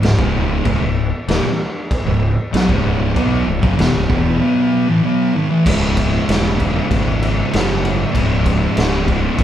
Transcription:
0.02 fingered electric bass C#1, distorted electric guitar C#2 G#2, snare, crash
0.19 fingered electric bass C#1, distorted electric guitar C#2 G#2 C#3, kick
0.65 fingered electric bass C#1, distorted electric guitar C#2 G#2, kick, crash
0.81 fingered electric bass C#1, distorted electric guitar C#2 G#2
1.28 fingered electric bass D#1, distorted electric guitar D#2 A#2, snare, crash
1.45 muted fingered electric bass stroke, muted distorted electric guitar stroke
1.91 kick, crash
2.06 fingered electric bass C#1, distorted electric guitar C#2 G#2
2.53 fingered electric bass B1, distorted electric guitar B2 F#3, snare, crash
2.69 fingered electric bass C#1, distorted electric guitar C#2 G#2 C#3, kick
3.16 fingered electric bass B1, distorted electric guitar B2 F#3 B3, kick, crash
3.46 fingered electric bass C#1, distorted electric guitar C#2 G#2
3.62 fingered electric bass F#1, distorted electric guitar F#2 C#3, kick
3.77 fingered electric bass E1, distorted electric guitar E2 B2, snare, crash
3.93 fingered electric bass C#1, distorted electric guitar C#2 G#2
4.08 fingered electric bass E1, distorted electric guitar E2 B2 E3, kick
4.39 distorted electric guitar B2 F#3 B3
4.88 distorted electric guitar A2 E3
5.02 distorted electric guitar B2 F#3 B3
5.33 distorted electric guitar G#2 D#3
5.49 distorted electric guitar A2 E3
5.65 fingered electric bass C#1, distorted electric guitar C#2 G#2, kick, crash
5.69 distorted electric guitar C#3
5.97 kick, crash
6.28 fingered electric bass E1, snare, crash
6.58 distorted electric guitar C#2 G#2 C#3, kick, crash
6.90 fingered electric bass G#1, kick, crash
7.23 crash
7.51 fingered electric bass F#1, distorted electric guitar C#2 G#2 C#3, snare, crash
7.85 crash
8.13 fingered electric bass C#1, distorted electric guitar C#2 G#2 C#3, kick, crash
8.46 kick, crash
8.77 fingered electric bass C#1, snare, crash
9.06 distorted electric guitar C#2 G#2 C#3, kick, crash
9.38 fingered electric bass E1, kick, crash

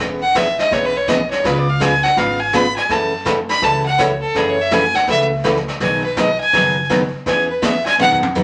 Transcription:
0.00 upright bass E1, steel-string acoustic guitar E3 B3 C#4 G#4
0.22 fiddle F#5
0.35 steel-string acoustic guitar E3 B3 C#4 G#4, fiddle E5, kick, snare, hi-hat pedal
0.59 fiddle D#5, snare
0.71 upright bass B1, steel-string acoustic guitar E3 B3 C#4 G#4, fiddle C#5, brush sweep, kick, snare
0.85 fiddle B4
0.97 fiddle C#5
1.08 steel-string acoustic guitar E3 B3 C#4 G#4, fiddle D#5, kick, snare, hi-hat pedal
1.30 fiddle C#5, snare
1.44 upright bass C#2, steel-string acoustic guitar C#3 G#3 B3 F4 G#4, fiddle B4, brush sweep, kick, snare
1.58 fiddle D5
1.70 fiddle F5
1.80 steel-string acoustic guitar C#3 G#3 B3 F4 G#4, fiddle G#5, kick, snare, hi-hat pedal
2.03 fiddle F#5, snare
2.16 upright bass G#1, steel-string acoustic guitar C#3 G#3 B3 F4 G#4, fiddle F5, brush sweep, kick, snare
2.40 fiddle G#5
2.53 steel-string acoustic guitar C#3 G#3 B3 F4 G#4, fiddle B5, kick, snare, hi-hat pedal
2.76 fiddle G#5, snare
2.89 upright bass F#2, steel-string acoustic guitar C#3 E3 A3 C#4 F#4, fiddle A5, brush sweep, kick, snare
3.25 steel-string acoustic guitar C#3 E3 A3 C#4 F#4, kick, snare, hi-hat pedal
3.49 fiddle B5, snare
3.61 upright bass C#2, steel-string acoustic guitar C#3 E3 A3 C#4 F#4, fiddle A5, brush sweep, kick, snare
3.86 fiddle F#5
3.98 steel-string acoustic guitar C#3 E3 A3 C#4 F#4, fiddle C#5, kick, snare, hi-hat pedal
4.21 fiddle A4
4.35 upright bass F#2, steel-string acoustic guitar C#3 E3 A3 C#4 F#4, fiddle G#4, brush sweep, kick, snare
4.49 fiddle C#5
4.61 fiddle E5
4.71 steel-string acoustic guitar C#3 E3 A3 C#4 F#4, fiddle G#5, kick, snare, hi-hat pedal
4.94 fiddle F#5, snare
5.07 upright bass C#2, steel-string acoustic guitar C#3 E3 A3 C#4 F#4, fiddle E5, brush sweep, kick, snare
5.44 steel-string acoustic guitar C#3 E3 A3 C#4 F#4, kick, snare, hi-hat pedal
5.56 snare
5.68 snare
5.80 upright bass B1, steel-string acoustic guitar B2 D#3 F#3 B3 D#4 G#4, fiddle G#5, brush sweep, kick, snare
6.05 fiddle B4
6.17 steel-string acoustic guitar B2 D#3 F#3 B3 D#4 G#4, fiddle D#5, kick, snare, hi-hat pedal
6.40 fiddle G#5
6.53 upright bass F#1, steel-string acoustic guitar B2 D#3 F#3 B3 D#4 G#4, brush sweep, kick, snare
6.89 steel-string acoustic guitar B2 D#3 F#3 B3 D#4 G#4, kick, snare, hi-hat pedal
7.26 upright bass E2, steel-string acoustic guitar E3 B3 C#4 G#4, fiddle G#5, brush sweep, kick, snare
7.49 fiddle B4
7.62 steel-string acoustic guitar E3 B3 C#4 G#4, fiddle E5, kick, snare, hi-hat pedal
7.85 fiddle G#5, snare
7.99 upright bass B1, steel-string acoustic guitar B2 D#3 F#3 B3 D#4 G#4, fiddle F#5, high tom
8.11 floor tom
8.23 high tom
8.35 steel-string acoustic guitar B2 D#3 F#3 B3 D#4 G#4, floor tom, hi-hat pedal

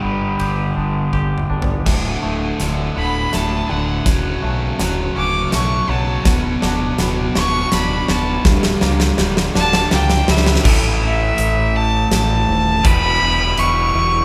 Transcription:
Already playing: clean electric guitar G2, overdriven electric guitar G2 D3 G3 B3 D4 G4
0.03 fingered electric bass G1, clean electric guitar B3
0.40 fingered electric bass G1, clean electric guitar G4, ride
0.76 fingered electric bass G1, clean electric guitar D4
1.13 fingered electric bass G1, clean electric guitar G4, kick
1.38 mid tom
1.50 fingered electric bass G1, clean electric guitar D4
1.62 floor tom
1.86 fingered electric bass D1, distorted electric guitar D2 A2 D3, clean electric guitar D2, kick, snare, crash
2.22 fingered electric bass D1, distorted electric guitar D2 A2 D3, clean electric guitar A3
2.59 fingered electric bass D1, distorted electric guitar D2 A2 D3, clean electric guitar D3, snare, closed hi-hat
2.95 fingered electric bass D1, distorted electric guitar D2 A2 D3, clean electric guitar B3, violin B5
3.32 fingered electric bass D1, distorted electric guitar D2 A2 D3, clean electric guitar A3, violin A5, snare, closed hi-hat
3.69 fingered electric bass D1, distorted electric guitar D2 A2 D3, clean electric guitar D3, violin F#5
4.05 fingered electric bass D1, distorted electric guitar F#2 C#3 F#3, clean electric guitar F#2, kick, snare, closed hi-hat
4.42 fingered electric bass B1, distorted electric guitar F#2 C#3 F#3, clean electric guitar A3
4.79 fingered electric bass D1, distorted electric guitar F#2 C#3 F#3, clean electric guitar F#3, snare, closed hi-hat
5.15 fingered electric bass D1, distorted electric guitar F#2 C#3 F#3, clean electric guitar C#4, violin D6
5.51 fingered electric bass B1, distorted electric guitar F#2 C#3 F#3, clean electric guitar A3, violin C#6, snare, closed hi-hat
5.88 fingered electric bass B1, distorted electric guitar F#2 C#3 F#3, clean electric guitar F#3, violin A5
6.24 fingered electric bass D1, distorted electric guitar B2 F#3 B3, clean electric guitar B2, kick, snare, closed hi-hat
6.61 fingered electric bass D1, distorted electric guitar B2 F#3 B3, clean electric guitar D4, snare
6.98 fingered electric bass D1, distorted electric guitar B2 F#3 B3, clean electric guitar B3, snare, closed hi-hat
7.34 fingered electric bass D1, distorted electric guitar B2 F#3 B3, clean electric guitar F#4, violin C#6, snare
7.71 fingered electric bass D1, distorted electric guitar B2 F#3 B3, clean electric guitar D4, violin B5, snare, closed hi-hat
8.08 fingered electric bass D1, distorted electric guitar B2 F#3 B3, clean electric guitar B3, violin A5, snare
8.44 fingered electric bass D1, distorted electric guitar G2 D3 G3, clean electric guitar G2, kick, snare
8.63 snare
8.81 fingered electric bass C#2, distorted electric guitar G2 D3 G3, clean electric guitar A#3, snare
9.00 snare
9.18 fingered electric bass D1, distorted electric guitar G2 D3 G3, clean electric guitar G3, snare
9.37 snare
9.54 fingered electric bass D1, distorted electric guitar G2 D3 G3, clean electric guitar D4, violin A5, snare
9.73 snare
9.91 fingered electric bass C#2, distorted electric guitar G2 D3 G3, clean electric guitar A#3, violin G5, snare
10.10 snare
10.27 fingered electric bass C#2, distorted electric guitar G2 D3 G3, clean electric guitar G3, violin E5, snare
10.37 snare
10.46 snare
10.56 snare
10.64 fingered electric bass A1, overdriven electric guitar A2 E3 A3 C#4 E4 A4, kick, crash
11.03 violin E5
11.38 fingered electric bass A1, closed hi-hat
11.76 violin A5
12.11 fingered electric bass A1, violin A5, snare, closed hi-hat
12.48 fingered electric bass D#1
12.83 fingered electric bass E1, overdriven electric guitar E2 B2 E3 G3 B3 E4, violin B5, kick, closed hi-hat
13.21 fingered electric bass E1
13.58 fingered electric bass E1, violin C#6, closed hi-hat
13.95 fingered electric bass E1

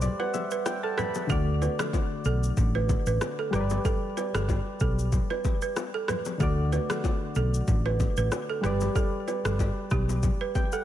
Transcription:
Already playing: synth keys G3 G4 B4 C5 D5
0.02 synth keys D5, low conga, shaker
0.19 balafon B4, synth keys F#5, high bongo
0.34 synth keys E5, low bongo, shaker
0.51 balafon B4, shaker
0.66 synth keys G5, cross-stick, high bongo, shaker
0.83 balafon A4, synth keys A5
0.98 balafon B4, synth keys B5, cross-stick, low conga, shaker
1.15 low bongo, shaker
1.27 fingered electric bass D2, synth keys D3 A3 F#4, balafon A4, kick, low conga, shaker
1.32 synth keys D5
1.62 balafon B4, high bongo, shaker
1.79 balafon A4, cross-stick, low bongo, shaker
1.93 kick, high bongo, shaker
2.25 fingered electric bass B1, balafon A4, shaker
2.43 shaker
2.57 fingered electric bass A1, kick, low conga, shaker
2.75 balafon B4, high bongo
2.89 kick, low bongo, shaker
3.06 fingered electric bass A1, balafon B4, shaker
3.21 cross-stick, high bongo, shaker
3.39 balafon A4
3.51 fingered electric bass G1, synth keys G3 G4 A#4, balafon B4, cross-stick, low conga, shaker
3.56 synth keys D5
3.60 synth keys B4
3.70 low bongo, shaker
3.85 balafon A4, kick, low conga, shaker
4.17 balafon B4, high bongo, shaker
4.34 fingered electric bass G1, balafon A4, cross-stick, low bongo, shaker
4.49 kick, high bongo, shaker
4.80 fingered electric bass B1, balafon A4, kick, shaker
4.99 shaker
5.12 kick, low conga, shaker
5.30 balafon B4, high bongo
5.45 kick, low bongo, shaker
5.62 balafon B4, shaker
5.76 cross-stick, high bongo, shaker
5.94 balafon A4
6.08 balafon B4, cross-stick, low conga, shaker
6.25 low bongo, shaker
6.38 fingered electric bass D2, synth keys D3 A3 F#4, balafon A4, kick, low conga, shaker
6.43 synth keys D5
6.72 balafon B4, high bongo, shaker
6.90 balafon A4, cross-stick, low bongo, shaker
7.04 kick, high bongo, shaker
7.35 fingered electric bass B1, balafon A4, shaker
7.54 shaker
7.68 fingered electric bass A1, kick, low conga, shaker
7.86 balafon B4, high bongo
8.00 kick, low bongo, shaker
8.17 fingered electric bass A1, balafon B4, shaker
8.32 cross-stick, high bongo, shaker
8.49 balafon A4
8.61 fingered electric bass G1, synth keys G3 G4 B4, balafon B4, cross-stick, low conga, shaker
8.66 synth keys D5
8.81 low bongo, shaker
8.96 balafon A4, kick, low conga, shaker
9.28 balafon B4, high bongo, shaker
9.45 fingered electric bass G1, balafon A4, cross-stick, low bongo, shaker
9.59 kick, high bongo, shaker
9.90 fingered electric bass B1, balafon G4, kick, cross-stick, shaker
10.09 low bongo, shaker
10.23 kick, low conga, shaker
10.41 balafon B4
10.55 synth keys G5, kick, low bongo, shaker
10.72 balafon A4, synth keys F#5, shaker

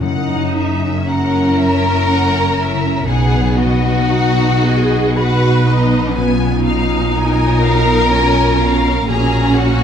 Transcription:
Already playing: harp A#3 F#4 C#5
0.00 double bass section F#1, timpani F#2, cello section F#2, harp F#2, french horn section C#4 E4, viola section D#4, violin section F#5
0.36 harp C#3
0.55 violin section E5
0.72 harp C#4
1.06 viola section C#4, harp F#4, violin section A#4 F#5, flute A#5
1.41 harp E5
1.59 violin section E5
1.74 harp C#5
2.08 harp E5, violin section F#5
2.40 harp F#4
2.58 violin section E5
2.73 harp C#3
3.07 double bass section B1, harp B2, cello section B2, viola section B3, french horn section B3 D#4, violin section G#4 F#5, flute G#5
3.41 harp F#3
3.56 violin section F#4 D#5, flute F#5
3.75 harp B3
4.09 viola section D#4, harp F#4, violin section F#5
4.44 harp D#5
4.63 viola section G#4, violin section D#5
4.81 harp B4
5.16 viola section F#4, violin section B4 F#5, harp D#5, flute B5
5.51 harp F#4
5.68 viola section D#4, violin section D#5
5.85 harp F#3
6.16 harp B2, viola section B3, french horn section C#4 F4, violin section G#5
6.49 harp B3
6.66 viola section D#4, violin section F5
6.82 harp C#4
7.15 harp F4, violin section A#4 G#5, flute A#5
7.47 harp C#5
7.64 violin section F5
7.80 harp F4
8.11 viola section C#4, harp C#5, violin section G#5
8.44 harp F4
8.60 violin section F5
8.76 harp B3
9.07 double bass section A#1, cello section A#2, harp A#2, viola section C#4, french horn section F#4, violin section G#4 A#5, flute G#5
9.40 harp A#3
9.55 violin section F#4 F#5, flute F#5
9.72 harp C#4

